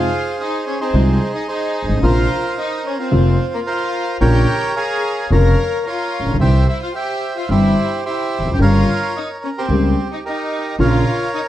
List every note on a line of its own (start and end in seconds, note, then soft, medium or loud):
0.00 0.36 F4 medium
0.00 0.79 G#4 medium
0.00 0.79 C5 medium
0.00 0.41 F5 medium
0.40 0.65 D#4 medium
0.40 0.65 D#5 medium
0.66 0.79 C#4 medium
0.66 0.81 C#5 medium
0.80 1.31 C4 medium
0.80 1.86 D#4 soft
0.80 1.47 G#4 soft
0.80 1.31 C5 medium
0.93 1.16 C2 medium
0.93 1.17 C2 medium
0.93 1.17 C3 medium
0.93 1.17 F3 medium
0.93 1.17 G#3 soft
0.93 1.17 D#4 medium
1.35 1.47 D#4 medium
1.35 1.47 D#5 medium
1.48 2.00 D#4 medium
1.48 1.99 G#4 soft
1.48 1.99 C5 soft
1.48 2.05 D#5 medium
1.82 1.89 G1 soft
1.82 1.90 G1 soft
1.89 1.96 G#1 medium
1.89 1.95 G#1 soft
1.96 2.02 A1 medium
1.96 2.03 A1 medium
2.02 2.26 A#1 medium
2.02 2.26 A#2 medium
2.02 2.26 C3 medium
2.02 2.26 F3 medium
2.02 2.26 A#3 medium
2.02 2.26 F4 medium
2.02 2.54 F4 medium
2.02 3.09 A#4 medium
2.02 2.98 C5 medium
2.02 2.59 F5 medium
2.58 2.83 D#4 medium
2.58 2.86 D#5 medium
2.85 2.98 C#4 medium
2.85 2.98 C#5 medium
2.99 3.49 C4 medium
2.99 4.04 F4 soft
2.99 3.55 C5 medium
3.11 3.35 F1 medium
3.11 3.35 F2 medium
3.11 3.34 C3 medium
3.11 3.35 F3 soft
3.11 3.35 A#3 medium
3.11 3.35 F4 medium
3.54 3.60 A#3 medium
3.54 3.60 A#4 medium
3.67 4.17 F4 medium
3.67 4.17 A#4 medium
3.67 4.17 C5 medium
3.67 4.17 F5 medium
4.21 4.44 A#1 medium
4.21 4.44 A#2 medium
4.21 4.44 C#3 medium
4.21 4.44 F3 medium
4.21 4.44 A#3 medium
4.21 4.44 F4 medium
4.21 4.72 G4 medium
4.21 5.26 A#4 medium
4.21 4.75 C#5 medium
4.21 4.72 G5 loud
4.76 5.27 G#4 medium
4.76 5.30 C#5 medium
4.76 5.30 F5 medium
4.76 5.27 G#5 medium
5.30 5.53 F1 medium
5.30 5.54 F1 medium
5.30 5.54 F2 medium
5.30 5.54 C#3 medium
5.30 5.54 F3 soft
5.30 5.54 A#3 medium
5.30 5.54 F4 medium
5.30 5.82 A#4 medium
5.30 5.85 C#5 medium
5.30 5.85 F5 medium
5.30 5.87 A#5 medium
5.87 6.37 F4 medium
5.87 6.37 A#4 soft
5.87 6.37 C#5 medium
5.87 6.37 F5 medium
6.20 6.25 A1 soft
6.20 6.27 A1 soft
6.26 6.32 A#1 soft
6.26 6.33 A#1 medium
6.33 6.39 B1 medium
6.33 6.40 B1 medium
6.40 6.63 C2 medium
6.40 6.63 C3 medium
6.40 6.63 E3 medium
6.40 6.63 G3 medium
6.40 6.63 C4 soft
6.40 6.63 G4 medium
6.40 6.66 G4 medium
6.40 6.94 C5 medium
6.40 6.67 E5 medium
6.40 6.66 G5 medium
6.68 6.80 E4 medium
6.68 6.81 E5 medium
6.81 6.94 F4 medium
6.81 6.96 F5 medium
6.95 7.33 G4 medium
6.95 7.49 C5 medium
6.95 7.49 E5 medium
6.95 7.37 G5 medium
7.37 7.49 F4 medium
7.37 7.50 F5 medium
7.49 7.72 G1 medium
7.49 7.72 G2 medium
7.49 7.72 E3 medium
7.49 7.72 G3 soft
7.49 7.73 C4 soft
7.49 8.01 E4 medium
7.49 7.73 G4 medium
7.49 8.04 G4 soft
7.49 8.04 C5 medium
7.49 8.01 E5 medium
8.06 8.50 E4 medium
8.06 8.56 G4 soft
8.06 8.56 C5 soft
8.06 8.50 E5 medium
8.39 8.45 E1 soft
8.39 8.46 E2 soft
8.45 8.52 F1 soft
8.45 8.52 F2 soft
8.52 8.58 F#1 medium
8.52 8.59 F#2 medium
8.52 8.59 G4 soft
8.52 8.60 G5 medium
8.59 8.82 G1 medium
8.59 8.82 G2 medium
8.59 8.82 C#3 medium
8.59 8.82 G3 medium
8.59 8.82 A#3 medium
8.59 9.12 F4 medium
8.59 8.82 G4 medium
8.59 9.66 A#4 medium
8.59 9.43 C#5 medium
8.59 9.17 F5 medium
9.16 9.29 D#4 medium
9.16 9.28 D#5 medium
9.44 9.50 C#4 soft
9.44 9.50 C#5 medium
9.58 10.08 C4 medium
9.58 10.24 G4 soft
9.58 10.08 C5 medium
9.69 9.92 C#2 medium
9.69 9.92 C#3 medium
9.69 9.92 G3 medium
9.69 9.92 A#3 medium
9.69 9.92 G4 medium
10.12 10.18 D#4 medium
10.12 10.19 D#5 medium
10.26 10.77 D#4 medium
10.26 10.76 G4 soft
10.26 10.76 A#4 medium
10.26 10.76 D#5 medium
10.79 11.02 A#1 medium
10.79 11.02 A#2 medium
10.79 11.02 C#3 medium
10.79 11.02 F3 medium
10.79 11.02 A#3 medium
10.79 11.02 F4 medium
10.79 11.31 F4 medium
10.79 11.48 A#4 medium
10.79 11.48 C#5 medium
10.79 11.31 F5 medium
11.34 11.40 D#4 medium
11.34 11.41 D#5 medium